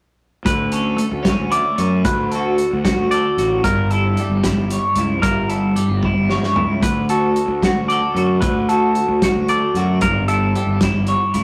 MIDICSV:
0, 0, Header, 1, 5, 480
1, 0, Start_track
1, 0, Key_signature, 2, "major"
1, 0, Tempo, 530973
1, 408, Time_signature, 6, 3, 24, 8
1, 10337, End_track
2, 0, Start_track
2, 0, Title_t, "Clean electric guitar"
2, 0, Program_c, 0, 27
2, 412, Note_on_c, 0, 71, 72
2, 656, Note_off_c, 0, 71, 0
2, 656, Note_on_c, 0, 69, 71
2, 1131, Note_off_c, 0, 69, 0
2, 1370, Note_on_c, 0, 74, 65
2, 1848, Note_off_c, 0, 74, 0
2, 1853, Note_on_c, 0, 71, 71
2, 2093, Note_off_c, 0, 71, 0
2, 2093, Note_on_c, 0, 69, 73
2, 2569, Note_off_c, 0, 69, 0
2, 2811, Note_on_c, 0, 74, 67
2, 3286, Note_off_c, 0, 74, 0
2, 3290, Note_on_c, 0, 70, 82
2, 3531, Note_off_c, 0, 70, 0
2, 3531, Note_on_c, 0, 69, 70
2, 4008, Note_off_c, 0, 69, 0
2, 4720, Note_on_c, 0, 70, 80
2, 4965, Note_off_c, 0, 70, 0
2, 4965, Note_on_c, 0, 69, 65
2, 5446, Note_off_c, 0, 69, 0
2, 6172, Note_on_c, 0, 71, 71
2, 6409, Note_off_c, 0, 71, 0
2, 6415, Note_on_c, 0, 69, 71
2, 6891, Note_off_c, 0, 69, 0
2, 7127, Note_on_c, 0, 74, 70
2, 7595, Note_off_c, 0, 74, 0
2, 7599, Note_on_c, 0, 71, 80
2, 7843, Note_off_c, 0, 71, 0
2, 7854, Note_on_c, 0, 69, 69
2, 8330, Note_off_c, 0, 69, 0
2, 8579, Note_on_c, 0, 74, 70
2, 9053, Note_off_c, 0, 74, 0
2, 9057, Note_on_c, 0, 70, 67
2, 9290, Note_off_c, 0, 70, 0
2, 9294, Note_on_c, 0, 69, 77
2, 9770, Note_off_c, 0, 69, 0
2, 10337, End_track
3, 0, Start_track
3, 0, Title_t, "Clean electric guitar"
3, 0, Program_c, 1, 27
3, 416, Note_on_c, 1, 38, 62
3, 654, Note_on_c, 1, 61, 45
3, 872, Note_on_c, 1, 57, 48
3, 1107, Note_off_c, 1, 61, 0
3, 1110, Note_on_c, 1, 61, 61
3, 1361, Note_on_c, 1, 64, 47
3, 1598, Note_off_c, 1, 61, 0
3, 1609, Note_on_c, 1, 61, 50
3, 1810, Note_off_c, 1, 57, 0
3, 1819, Note_off_c, 1, 61, 0
3, 1837, Note_off_c, 1, 38, 0
3, 1848, Note_on_c, 1, 38, 61
3, 2125, Note_on_c, 1, 66, 50
3, 2561, Note_off_c, 1, 66, 0
3, 2572, Note_on_c, 1, 66, 59
3, 2834, Note_off_c, 1, 64, 0
3, 2838, Note_on_c, 1, 69, 51
3, 3049, Note_off_c, 1, 66, 0
3, 3060, Note_on_c, 1, 66, 58
3, 3264, Note_off_c, 1, 66, 0
3, 3273, Note_off_c, 1, 69, 0
3, 3287, Note_off_c, 1, 38, 0
3, 3302, Note_on_c, 1, 43, 66
3, 3545, Note_on_c, 1, 64, 49
3, 3794, Note_on_c, 1, 55, 52
3, 4019, Note_off_c, 1, 64, 0
3, 4023, Note_on_c, 1, 64, 55
3, 4269, Note_on_c, 1, 73, 46
3, 4504, Note_off_c, 1, 64, 0
3, 4508, Note_on_c, 1, 64, 55
3, 4705, Note_off_c, 1, 43, 0
3, 4708, Note_off_c, 1, 73, 0
3, 4733, Note_on_c, 1, 43, 62
3, 4974, Note_off_c, 1, 64, 0
3, 4977, Note_on_c, 1, 64, 46
3, 5195, Note_off_c, 1, 55, 0
3, 5206, Note_on_c, 1, 55, 55
3, 5464, Note_off_c, 1, 64, 0
3, 5467, Note_on_c, 1, 64, 63
3, 5702, Note_on_c, 1, 73, 51
3, 5925, Note_off_c, 1, 64, 0
3, 5929, Note_on_c, 1, 64, 55
3, 6141, Note_off_c, 1, 43, 0
3, 6145, Note_off_c, 1, 73, 0
3, 6166, Note_off_c, 1, 55, 0
3, 6166, Note_on_c, 1, 38, 65
3, 6193, Note_off_c, 1, 64, 0
3, 6419, Note_on_c, 1, 66, 47
3, 6906, Note_off_c, 1, 66, 0
3, 6910, Note_on_c, 1, 66, 58
3, 7160, Note_on_c, 1, 69, 52
3, 7375, Note_off_c, 1, 66, 0
3, 7386, Note_on_c, 1, 66, 50
3, 7588, Note_off_c, 1, 66, 0
3, 7595, Note_off_c, 1, 69, 0
3, 7598, Note_off_c, 1, 38, 0
3, 7609, Note_on_c, 1, 38, 73
3, 7863, Note_on_c, 1, 66, 51
3, 8335, Note_off_c, 1, 66, 0
3, 8347, Note_on_c, 1, 66, 58
3, 8586, Note_on_c, 1, 69, 45
3, 8817, Note_off_c, 1, 66, 0
3, 8829, Note_on_c, 1, 66, 53
3, 9028, Note_off_c, 1, 69, 0
3, 9029, Note_off_c, 1, 66, 0
3, 9048, Note_off_c, 1, 38, 0
3, 9056, Note_on_c, 1, 43, 68
3, 9298, Note_on_c, 1, 64, 55
3, 9544, Note_on_c, 1, 55, 54
3, 9772, Note_off_c, 1, 64, 0
3, 9794, Note_on_c, 1, 64, 64
3, 10019, Note_on_c, 1, 73, 49
3, 10239, Note_off_c, 1, 64, 0
3, 10250, Note_on_c, 1, 64, 49
3, 10337, Note_off_c, 1, 43, 0
3, 10337, Note_off_c, 1, 55, 0
3, 10337, Note_off_c, 1, 64, 0
3, 10337, Note_off_c, 1, 73, 0
3, 10337, End_track
4, 0, Start_track
4, 0, Title_t, "Fingered electric bass"
4, 0, Program_c, 2, 33
4, 408, Note_on_c, 2, 38, 92
4, 870, Note_off_c, 2, 38, 0
4, 1011, Note_on_c, 2, 38, 74
4, 1194, Note_off_c, 2, 38, 0
4, 1254, Note_on_c, 2, 38, 68
4, 1436, Note_off_c, 2, 38, 0
4, 1612, Note_on_c, 2, 42, 69
4, 1851, Note_off_c, 2, 42, 0
4, 1851, Note_on_c, 2, 38, 96
4, 2311, Note_off_c, 2, 38, 0
4, 2470, Note_on_c, 2, 38, 83
4, 2646, Note_off_c, 2, 38, 0
4, 2687, Note_on_c, 2, 38, 78
4, 2872, Note_off_c, 2, 38, 0
4, 3049, Note_on_c, 2, 33, 75
4, 3288, Note_off_c, 2, 33, 0
4, 3288, Note_on_c, 2, 31, 92
4, 3750, Note_off_c, 2, 31, 0
4, 3883, Note_on_c, 2, 31, 80
4, 4069, Note_off_c, 2, 31, 0
4, 4127, Note_on_c, 2, 31, 79
4, 4311, Note_off_c, 2, 31, 0
4, 4482, Note_on_c, 2, 37, 76
4, 4729, Note_off_c, 2, 37, 0
4, 4729, Note_on_c, 2, 31, 82
4, 5190, Note_off_c, 2, 31, 0
4, 5329, Note_on_c, 2, 31, 75
4, 5513, Note_off_c, 2, 31, 0
4, 5581, Note_on_c, 2, 31, 67
4, 5760, Note_off_c, 2, 31, 0
4, 5928, Note_on_c, 2, 37, 69
4, 6166, Note_off_c, 2, 37, 0
4, 6166, Note_on_c, 2, 38, 88
4, 6628, Note_off_c, 2, 38, 0
4, 6765, Note_on_c, 2, 38, 76
4, 6951, Note_off_c, 2, 38, 0
4, 7002, Note_on_c, 2, 38, 70
4, 7189, Note_off_c, 2, 38, 0
4, 7365, Note_on_c, 2, 42, 69
4, 7614, Note_off_c, 2, 42, 0
4, 7614, Note_on_c, 2, 38, 99
4, 8073, Note_off_c, 2, 38, 0
4, 8214, Note_on_c, 2, 38, 72
4, 8396, Note_off_c, 2, 38, 0
4, 8453, Note_on_c, 2, 38, 77
4, 8635, Note_off_c, 2, 38, 0
4, 8809, Note_on_c, 2, 42, 62
4, 9057, Note_on_c, 2, 31, 93
4, 9071, Note_off_c, 2, 42, 0
4, 9515, Note_off_c, 2, 31, 0
4, 9644, Note_on_c, 2, 31, 76
4, 9830, Note_off_c, 2, 31, 0
4, 9891, Note_on_c, 2, 31, 70
4, 10074, Note_off_c, 2, 31, 0
4, 10252, Note_on_c, 2, 37, 76
4, 10337, Note_off_c, 2, 37, 0
4, 10337, End_track
5, 0, Start_track
5, 0, Title_t, "Drums"
5, 414, Note_on_c, 9, 36, 107
5, 416, Note_on_c, 9, 42, 76
5, 504, Note_off_c, 9, 36, 0
5, 506, Note_off_c, 9, 42, 0
5, 650, Note_on_c, 9, 42, 58
5, 740, Note_off_c, 9, 42, 0
5, 889, Note_on_c, 9, 42, 59
5, 979, Note_off_c, 9, 42, 0
5, 1129, Note_on_c, 9, 36, 61
5, 1130, Note_on_c, 9, 38, 84
5, 1130, Note_on_c, 9, 42, 69
5, 1220, Note_off_c, 9, 36, 0
5, 1220, Note_off_c, 9, 38, 0
5, 1220, Note_off_c, 9, 42, 0
5, 1371, Note_on_c, 9, 42, 57
5, 1461, Note_off_c, 9, 42, 0
5, 1611, Note_on_c, 9, 42, 57
5, 1701, Note_off_c, 9, 42, 0
5, 1851, Note_on_c, 9, 42, 83
5, 1852, Note_on_c, 9, 36, 101
5, 1941, Note_off_c, 9, 42, 0
5, 1942, Note_off_c, 9, 36, 0
5, 2094, Note_on_c, 9, 42, 57
5, 2184, Note_off_c, 9, 42, 0
5, 2333, Note_on_c, 9, 42, 51
5, 2424, Note_off_c, 9, 42, 0
5, 2573, Note_on_c, 9, 36, 71
5, 2577, Note_on_c, 9, 38, 86
5, 2577, Note_on_c, 9, 42, 63
5, 2663, Note_off_c, 9, 36, 0
5, 2667, Note_off_c, 9, 38, 0
5, 2667, Note_off_c, 9, 42, 0
5, 2815, Note_on_c, 9, 42, 55
5, 2906, Note_off_c, 9, 42, 0
5, 3059, Note_on_c, 9, 42, 53
5, 3149, Note_off_c, 9, 42, 0
5, 3291, Note_on_c, 9, 36, 98
5, 3292, Note_on_c, 9, 42, 67
5, 3381, Note_off_c, 9, 36, 0
5, 3383, Note_off_c, 9, 42, 0
5, 3530, Note_on_c, 9, 42, 49
5, 3621, Note_off_c, 9, 42, 0
5, 3771, Note_on_c, 9, 42, 49
5, 3861, Note_off_c, 9, 42, 0
5, 4009, Note_on_c, 9, 36, 60
5, 4011, Note_on_c, 9, 38, 85
5, 4011, Note_on_c, 9, 42, 67
5, 4099, Note_off_c, 9, 36, 0
5, 4102, Note_off_c, 9, 38, 0
5, 4102, Note_off_c, 9, 42, 0
5, 4253, Note_on_c, 9, 42, 58
5, 4344, Note_off_c, 9, 42, 0
5, 4480, Note_on_c, 9, 42, 59
5, 4571, Note_off_c, 9, 42, 0
5, 4729, Note_on_c, 9, 36, 95
5, 4729, Note_on_c, 9, 42, 74
5, 4819, Note_off_c, 9, 36, 0
5, 4820, Note_off_c, 9, 42, 0
5, 4969, Note_on_c, 9, 42, 59
5, 5059, Note_off_c, 9, 42, 0
5, 5210, Note_on_c, 9, 42, 54
5, 5300, Note_off_c, 9, 42, 0
5, 5449, Note_on_c, 9, 36, 60
5, 5454, Note_on_c, 9, 48, 48
5, 5539, Note_off_c, 9, 36, 0
5, 5544, Note_off_c, 9, 48, 0
5, 5692, Note_on_c, 9, 38, 59
5, 5782, Note_off_c, 9, 38, 0
5, 5817, Note_on_c, 9, 38, 58
5, 5908, Note_off_c, 9, 38, 0
5, 5931, Note_on_c, 9, 43, 80
5, 6021, Note_off_c, 9, 43, 0
5, 6170, Note_on_c, 9, 36, 97
5, 6173, Note_on_c, 9, 42, 80
5, 6261, Note_off_c, 9, 36, 0
5, 6264, Note_off_c, 9, 42, 0
5, 6410, Note_on_c, 9, 42, 60
5, 6500, Note_off_c, 9, 42, 0
5, 6654, Note_on_c, 9, 42, 54
5, 6744, Note_off_c, 9, 42, 0
5, 6893, Note_on_c, 9, 36, 62
5, 6898, Note_on_c, 9, 38, 92
5, 6898, Note_on_c, 9, 42, 62
5, 6983, Note_off_c, 9, 36, 0
5, 6989, Note_off_c, 9, 38, 0
5, 6989, Note_off_c, 9, 42, 0
5, 7140, Note_on_c, 9, 42, 56
5, 7230, Note_off_c, 9, 42, 0
5, 7381, Note_on_c, 9, 42, 51
5, 7471, Note_off_c, 9, 42, 0
5, 7609, Note_on_c, 9, 42, 68
5, 7614, Note_on_c, 9, 36, 107
5, 7699, Note_off_c, 9, 42, 0
5, 7704, Note_off_c, 9, 36, 0
5, 7858, Note_on_c, 9, 42, 51
5, 7948, Note_off_c, 9, 42, 0
5, 8093, Note_on_c, 9, 42, 54
5, 8183, Note_off_c, 9, 42, 0
5, 8335, Note_on_c, 9, 36, 65
5, 8335, Note_on_c, 9, 38, 81
5, 8335, Note_on_c, 9, 42, 72
5, 8425, Note_off_c, 9, 36, 0
5, 8426, Note_off_c, 9, 38, 0
5, 8426, Note_off_c, 9, 42, 0
5, 8574, Note_on_c, 9, 42, 56
5, 8665, Note_off_c, 9, 42, 0
5, 8816, Note_on_c, 9, 42, 52
5, 8907, Note_off_c, 9, 42, 0
5, 9049, Note_on_c, 9, 42, 81
5, 9054, Note_on_c, 9, 36, 96
5, 9140, Note_off_c, 9, 42, 0
5, 9144, Note_off_c, 9, 36, 0
5, 9295, Note_on_c, 9, 42, 54
5, 9386, Note_off_c, 9, 42, 0
5, 9542, Note_on_c, 9, 42, 55
5, 9632, Note_off_c, 9, 42, 0
5, 9770, Note_on_c, 9, 36, 60
5, 9771, Note_on_c, 9, 38, 88
5, 9771, Note_on_c, 9, 42, 72
5, 9860, Note_off_c, 9, 36, 0
5, 9861, Note_off_c, 9, 38, 0
5, 9861, Note_off_c, 9, 42, 0
5, 10005, Note_on_c, 9, 42, 54
5, 10095, Note_off_c, 9, 42, 0
5, 10252, Note_on_c, 9, 42, 52
5, 10337, Note_off_c, 9, 42, 0
5, 10337, End_track
0, 0, End_of_file